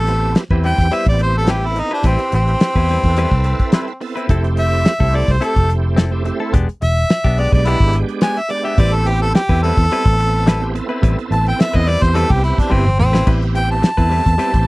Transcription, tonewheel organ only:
0.00 0.44 B3 medium
0.00 0.44 C4 medium
0.00 0.44 E4 medium
0.00 0.44 G4 medium
0.50 0.88 B3 medium
0.50 0.88 C4 medium
0.50 0.89 E4 medium
0.50 0.89 G4 medium
0.91 1.56 B3 medium
0.91 1.56 C4 medium
0.91 1.56 E4 medium
0.91 1.57 G4 medium
1.62 1.74 B3 medium
1.62 1.74 C4 medium
1.62 1.75 E4 medium
1.62 1.75 A4 medium
1.75 1.89 B3 medium
1.75 1.90 C4 medium
1.75 1.90 E4 medium
1.75 1.90 A4 medium
1.91 2.93 C4 medium
1.91 2.93 E4 medium
1.91 2.93 G4 medium
1.91 2.92 B4 medium
3.03 3.93 C4 medium
3.03 3.93 E4 medium
3.03 3.93 A4 medium
3.03 3.93 B4 medium
4.01 4.27 B3 medium
4.01 4.27 C4 medium
4.01 4.27 E4 medium
4.01 4.27 A4 medium
4.28 4.93 A3 medium
4.28 4.93 C4 medium
4.28 4.94 E4 medium
4.28 4.94 G4 loud
4.99 5.37 A3 medium
4.99 5.37 C4 medium
4.99 5.38 E4 medium
4.99 5.38 G4 medium
5.40 6.05 A3 medium
5.40 6.05 C4 medium
5.40 6.06 E4 medium
5.40 6.06 G4 medium
6.11 6.23 A3 medium
6.11 6.24 C4 medium
6.11 6.24 E4 medium
6.11 6.24 G4 loud
6.25 6.39 A3 medium
6.25 6.39 C4 medium
6.25 6.39 E4 medium
6.25 6.40 G4 loud
6.40 6.53 A3 medium
6.40 6.54 C4 medium
6.40 6.54 E4 medium
6.40 6.54 A4 loud
7.52 8.41 G#3 medium
7.52 8.41 B3 medium
7.52 8.42 D4 medium
7.52 8.42 G4 medium
8.48 8.75 G#3 medium
8.48 8.75 B3 medium
8.48 8.75 D4 medium
8.48 8.76 G4 medium
8.77 9.42 B3 medium
8.77 9.42 C4 medium
8.77 9.42 E4 medium
8.77 9.43 G4 medium
9.49 9.86 B3 medium
9.49 9.87 C4 medium
9.49 9.87 E4 medium
9.49 9.87 A4 medium
9.89 10.54 B3 medium
9.89 10.54 C4 medium
9.89 10.55 E4 medium
9.89 10.55 A4 medium
10.60 10.73 B3 medium
10.60 10.73 C4 medium
10.60 10.74 E4 medium
10.60 10.74 G4 loud
10.74 10.87 B3 medium
10.74 10.88 C4 medium
10.74 10.88 E4 medium
10.74 10.89 A4 loud
10.88 11.90 B3 medium
10.88 11.90 C4 medium
10.88 11.91 E4 medium
10.88 11.91 A4 medium
12.01 12.90 B3 medium
12.01 12.90 C4 medium
12.01 12.90 E4 medium
12.01 12.91 G4 medium
12.99 13.25 B3 medium
12.99 13.25 C4 medium
12.99 13.25 E4 medium
12.99 13.26 A4 medium
13.27 13.91 B3 medium
13.27 13.91 C4 medium
13.27 13.92 E4 medium
13.27 13.92 G4 medium
13.97 14.35 B3 medium
13.97 14.36 C4 medium
13.97 14.36 E4 medium
13.97 14.36 A4 medium
14.39 14.67 B3 medium
14.39 14.67 C4 medium
14.39 14.67 E4 medium
14.39 14.67 G4 medium

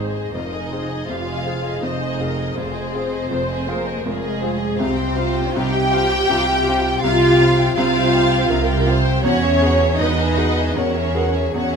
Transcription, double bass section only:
0.00 0.23 G#1 medium
0.33 1.00 F1 soft
1.08 1.74 F1 medium
1.83 2.49 F1 medium
2.58 3.23 F1 medium
3.31 3.97 F1 medium
4.05 4.70 F1 medium
4.79 5.47 C2 medium
5.56 6.21 C2 medium
6.30 6.95 C2 medium
7.02 7.68 C2 medium
7.77 8.42 C2 medium
8.50 9.16 C2 medium
9.25 9.91 E2 medium
10.00 10.68 E2 medium
10.77 11.45 E2 medium
11.54 11.76 E2 medium

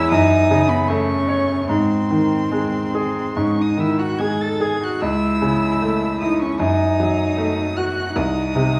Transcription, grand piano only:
0.00 0.13 E2 medium
0.00 0.13 E3 medium
0.00 0.13 G#3 medium
0.00 0.12 C#5 medium
0.12 1.65 F#2 medium
0.51 1.13 C#3 medium
0.90 1.53 A3 medium
1.28 1.69 C#5 medium
1.69 3.33 G#2 medium
2.11 2.78 D#3 soft
2.52 3.20 G#3 soft
2.95 3.62 G#4 soft
3.37 4.98 G#2 soft
3.77 4.44 D#3 soft
4.20 4.86 G#3 soft
4.61 5.02 G#4 soft
5.02 6.57 C#2 medium
5.42 6.06 C#3 soft
5.82 6.46 A3 soft
6.22 6.61 E4 soft
6.60 8.12 F#2 medium
7.00 7.62 F#3 soft
7.37 8.00 A3 soft
7.78 8.16 F#4 soft
8.16 8.80 C2 medium
8.55 8.80 C3 soft

